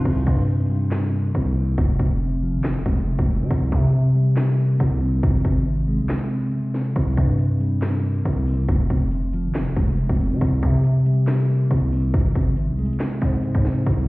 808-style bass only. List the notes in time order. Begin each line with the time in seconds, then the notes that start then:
0.05 C2
0.27 G2
1.35 C2
1.78 F1
1.99 F1
2.54 G#1
2.70 F1
2.86 F1
3.19 F1
3.40 C3
3.51 C2
3.72 C3
4.80 C2
5.23 G#1
5.45 G#1
5.99 C2
6.96 C2
7.17 G2
8.25 C2
8.69 F1
8.90 F1
9.45 G#1
9.61 F1
9.76 F1
10.09 F1
10.31 C3
10.41 C2
10.63 C3
11.71 C2
12.14 G#1
12.35 G#1
12.69 C2
13.22 G#2
13.55 G#2
13.87 C2